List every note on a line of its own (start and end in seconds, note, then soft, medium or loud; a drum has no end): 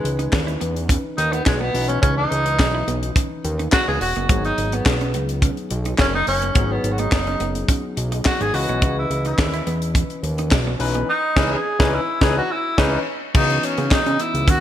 0.00 1.70 E3 medium
0.00 0.61 G#3 medium
0.00 1.70 C#4 medium
0.00 1.71 D#4 medium
0.00 1.71 B4 medium
0.00 muted clean electric guitar stroke soft
0.05 0.28 C#2 medium
0.05 closed hi-hat medium
0.19 0.30 D#4 medium
0.19 closed hi-hat medium
0.32 0.57 D#2 medium
0.32 muted clean electric guitar stroke soft
0.32 kick loud
0.32 snare loud
0.32 clap medium
0.47 0.58 E4 medium
0.47 closed hi-hat soft
0.61 0.98 E2 medium
0.61 0.73 B3 medium
0.61 closed hi-hat medium
0.76 closed hi-hat medium
0.89 1.02 C#4 medium
0.89 kick loud
0.89 closed hi-hat loud
1.17 1.42 D#2 medium
1.17 1.34 D#4 loud
1.17 muted clean electric guitar stroke soft
1.17 closed hi-hat medium
1.32 1.45 B3 medium
1.32 1.43 D#4 medium
1.32 closed hi-hat soft
1.45 1.70 B1 loud
1.45 1.62 G#3 loud
1.45 kick loud
1.45 snare medium
1.45 clap medium
1.60 1.90 B3 loud
1.60 1.72 B3 medium
1.74 1.98 B1 medium
1.74 3.97 E3 medium
1.74 3.97 C#4 medium
1.74 3.97 D#4 medium
1.74 3.97 B4 medium
1.74 muted clean electric guitar stroke soft
1.74 open hi-hat medium
1.88 2.00 B3 medium
1.88 2.01 C#4 loud
1.88 closed hi-hat soft
2.02 2.27 C#2 loud
2.02 2.16 C#4 loud
2.02 2.15 C#4 medium
2.02 kick loud
2.02 closed hi-hat medium
2.17 2.98 D#4 loud
2.31 2.61 C#2 medium
2.31 muted clean electric guitar stroke soft
2.31 closed hi-hat medium
2.46 2.57 D#4 medium
2.46 closed hi-hat soft
2.59 2.83 B1 medium
2.59 kick loud
2.59 snare loud
2.59 clap medium
2.75 2.85 E4 medium
2.88 3.12 B1 medium
2.88 3.00 B3 medium
2.88 closed hi-hat medium
3.03 closed hi-hat soft
3.16 3.28 C#4 medium
3.16 kick loud
3.16 closed hi-hat loud
3.44 3.68 D#2 medium
3.44 muted clean electric guitar stroke soft
3.44 closed hi-hat medium
3.59 3.70 D#4 medium
3.59 closed hi-hat soft
3.72 3.87 F#4 loud
3.72 kick loud
3.72 snare loud
3.72 clap medium
3.88 3.99 C#2 medium
3.88 3.99 B3 medium
3.88 4.00 G#4 loud
4.01 4.14 E1 medium
4.01 4.41 F#4 medium
4.01 muted clean electric guitar stroke soft
4.01 open hi-hat medium
4.16 4.28 F#1 medium
4.16 4.27 B3 medium
4.16 closed hi-hat soft
4.29 4.53 G#1 medium
4.29 6.51 F#3 medium
4.29 4.42 G#3 medium
4.29 6.52 B3 medium
4.29 6.52 D#4 medium
4.29 6.52 G#4 medium
4.29 kick loud
4.29 closed hi-hat medium
4.45 4.76 D#4 medium
4.45 closed hi-hat soft
4.58 4.82 G#1 medium
4.58 muted clean electric guitar stroke soft
4.58 closed hi-hat medium
4.72 4.84 B3 medium
4.72 5.30 B3 medium
4.72 closed hi-hat medium
4.86 5.16 B1 medium
4.86 kick loud
4.86 snare loud
4.86 clap medium
5.01 5.12 C#4 medium
5.01 closed hi-hat soft
5.14 5.51 C#2 medium
5.14 5.27 B3 medium
5.14 closed hi-hat medium
5.29 closed hi-hat medium
5.42 5.55 C#4 medium
5.42 kick loud
5.42 closed hi-hat medium
5.57 closed hi-hat soft
5.71 5.95 B1 medium
5.71 muted clean electric guitar stroke soft
5.71 closed hi-hat medium
5.85 5.97 D#4 medium
5.85 closed hi-hat soft
5.98 6.23 F#1 loud
5.98 6.13 C#4 loud
5.98 kick loud
5.98 snare medium
5.98 clap medium
6.14 6.25 B3 medium
6.14 6.27 D#4 loud
6.27 6.51 F#1 medium
6.27 6.73 C#4 loud
6.27 muted clean electric guitar stroke soft
6.27 open hi-hat medium
6.42 6.53 B3 medium
6.42 closed hi-hat soft
6.55 6.79 G#1 medium
6.55 8.49 F#3 medium
6.55 6.68 G#3 medium
6.55 8.50 B3 medium
6.55 8.50 D#4 medium
6.55 8.50 G#4 medium
6.55 kick loud
6.55 closed hi-hat medium
6.72 6.94 B3 medium
6.84 7.08 G#1 medium
6.84 muted clean electric guitar stroke soft
6.84 closed hi-hat medium
6.93 7.01 F#4 medium
6.98 7.10 B3 medium
6.98 7.56 D#4 medium
6.98 closed hi-hat medium
7.12 7.36 F#1 medium
7.12 muted clean electric guitar stroke soft
7.12 kick loud
7.12 snare loud
7.12 clap medium
7.27 7.38 C#4 medium
7.27 closed hi-hat soft
7.40 7.64 F#1 loud
7.40 7.53 B3 medium
7.40 closed hi-hat medium
7.55 closed hi-hat medium
7.68 7.81 C#4 medium
7.68 kick loud
7.68 closed hi-hat loud
7.97 8.21 B1 medium
7.97 muted clean electric guitar stroke soft
7.97 closed hi-hat medium
8.12 8.23 D#4 medium
8.12 closed hi-hat medium
8.25 8.43 F#4 loud
8.25 kick loud
8.25 snare medium
8.25 clap medium
8.40 8.52 G#1 medium
8.40 8.51 B3 medium
8.40 8.56 G#4 loud
8.40 closed hi-hat soft
8.53 8.66 C#2 medium
8.53 10.76 E3 medium
8.53 10.76 C#4 medium
8.53 8.97 F#4 loud
8.53 10.77 B4 medium
8.53 10.76 D#5 medium
8.53 muted clean electric guitar stroke soft
8.53 open hi-hat medium
8.69 8.84 B1 medium
8.69 8.80 B3 medium
8.69 closed hi-hat soft
8.82 9.06 C#2 loud
8.82 8.94 C#4 medium
8.82 kick loud
8.82 closed hi-hat medium
8.99 9.24 E4 medium
9.10 9.34 C#2 medium
9.10 muted clean electric guitar stroke soft
9.10 closed hi-hat medium
9.25 9.37 D#4 medium
9.25 9.79 E4 medium
9.25 closed hi-hat soft
9.38 9.62 D#2 medium
9.38 muted clean electric guitar stroke soft
9.38 kick loud
9.38 snare loud
9.38 clap medium
9.54 9.65 E4 medium
9.54 closed hi-hat soft
9.67 10.03 E2 medium
9.67 9.79 B3 medium
9.67 closed hi-hat medium
9.82 closed hi-hat medium
9.95 10.08 C#4 medium
9.95 kick loud
9.95 closed hi-hat loud
10.10 closed hi-hat soft
10.23 10.54 D#2 loud
10.23 muted clean electric guitar stroke soft
10.23 closed hi-hat medium
10.38 10.50 D#4 medium
10.38 closed hi-hat medium
10.51 10.76 B1 loud
10.51 kick loud
10.51 snare medium
10.51 clap medium
10.67 10.78 B3 medium
10.79 11.04 B1 medium
10.79 11.07 E3 medium
10.79 11.08 C#4 medium
10.79 11.08 D#4 medium
10.79 11.08 B4 medium
10.79 muted clean electric guitar stroke soft
10.79 open hi-hat medium
10.94 11.06 B3 medium
10.94 closed hi-hat soft
11.10 11.54 D#4 loud
11.36 11.56 C#2 medium
11.36 11.56 E3 medium
11.36 11.56 C#4 loud
11.36 11.56 D#4 medium
11.36 11.57 B4 medium
11.36 kick loud
11.36 snare loud
11.36 crash medium
11.53 11.96 G#4 loud
11.79 11.99 C#2 loud
11.79 11.98 E3 loud
11.79 11.99 C#4 loud
11.79 11.99 D#4 medium
11.79 11.99 B4 loud
11.79 kick loud
11.79 snare loud
11.94 12.24 E4 loud
12.21 12.41 C#2 loud
12.21 12.41 E3 loud
12.21 12.41 C#4 medium
12.21 12.41 D#4 medium
12.21 12.37 G#4 loud
12.21 12.42 B4 loud
12.21 kick loud
12.21 snare loud
12.38 12.53 F#4 loud
12.52 12.81 E4 medium
12.78 12.98 C#2 loud
12.78 12.97 E3 loud
12.78 12.98 C#4 loud
12.78 13.07 C#4 medium
12.78 12.98 D#4 loud
12.78 12.98 B4 loud
12.78 kick loud
12.78 snare loud
12.78 crash medium
13.34 13.59 C#2 loud
13.34 14.60 E3 medium
13.34 14.60 B3 medium
13.34 13.47 C#4 medium
13.34 14.60 C#4 medium
13.34 14.60 D#4 medium
13.34 13.66 D#4 medium
13.34 14.60 F#4 medium
13.34 kick loud
13.34 crash loud
13.50 closed hi-hat soft
13.63 13.95 C#4 medium
13.63 muted clean electric guitar stroke soft
13.63 closed hi-hat medium
13.78 13.89 C#3 loud
13.78 13.89 B3 medium
13.78 closed hi-hat soft
13.91 13.97 C#3 soft
13.91 14.23 D#4 medium
13.91 kick loud
13.91 snare loud
13.91 clap medium
14.06 14.18 C#3 loud
14.06 14.17 C#4 medium
14.06 closed hi-hat soft
14.20 14.32 B3 medium
14.20 14.51 E4 loud
14.20 closed hi-hat medium
14.34 14.49 C#2 loud
14.34 closed hi-hat medium
14.48 14.60 D#2 loud
14.48 14.60 C#4 medium
14.48 14.60 F#4 loud
14.48 kick loud
14.48 closed hi-hat medium